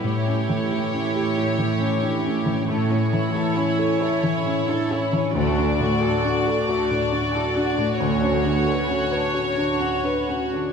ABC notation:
X:1
M:3/4
L:1/16
Q:1/4=68
K:Amix
V:1 name="Violin section"
c12 | c12 | d12 | c12 |]
V:2 name="Viola section"
E12 | E12 | F12- | F12 |]
V:3 name="Violin section"
G12 | A, C E A E C A, C E A E C | A, D F A F D A, D F A F D | C D F B F D C D F B F D |]
V:4 name="Harp"
[A,,G,E]2 E,2 E2 c2 E2 C2 | A,,2 E,2 E2 c2 E2 C2 | D,2 A,2 F2 f2 F2 D2 | D,2 B,2 F2 c2 F2 C2 |]
V:5 name="Felt piano"
A,, C E, E C G E E, C D C E, | A,, C E, E C A E E, C D C E, | D,, D A,, F D A F A,, D E D A,, | D,, C D, F C B F D, C D C D, |]
V:6 name="Cello section" clef=bass
A,,12 | A,,4 z8 | D,,4 z8 | D,,4 z8 |]